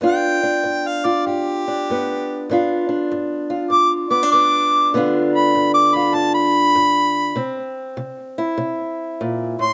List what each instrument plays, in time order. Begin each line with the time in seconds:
0.01 steel-string acoustic guitar G2 B3 D4 F4
0.06 harmonica G5
0.43 steel-string acoustic guitar D4
0.64 steel-string acoustic guitar G2
0.87 harmonica F5
1.05 steel-string acoustic guitar F4, harmonica D5
1.26 steel-string acoustic guitar G2, harmonica G4
1.68 steel-string acoustic guitar D4
1.90 steel-string acoustic guitar G2 B3
2.49 steel-string acoustic guitar G2 B3 D4 F4
2.89 steel-string acoustic guitar D4
3.11 steel-string acoustic guitar G2
3.50 steel-string acoustic guitar F4
3.70 steel-string acoustic guitar G2, harmonica D6
4.10 steel-string acoustic guitar B3, harmonica D6
4.23 steel-string acoustic guitar D4
4.32 steel-string acoustic guitar G2 B3, harmonica D6
4.94 steel-string acoustic guitar G2 D3 B3 D4 F4
5.35 harmonica B5
5.55 steel-string acoustic guitar G2
5.74 harmonica D6
5.95 steel-string acoustic guitar F4, harmonica B5
6.13 steel-string acoustic guitar G2, harmonica A5
6.35 harmonica B5
6.75 steel-string acoustic guitar G2
7.36 steel-string acoustic guitar C3 C4
7.97 steel-string acoustic guitar C3
8.38 steel-string acoustic guitar E4
8.58 steel-string acoustic guitar C3
9.21 steel-string acoustic guitar A#2
9.59 steel-string acoustic guitar A2, harmonica C6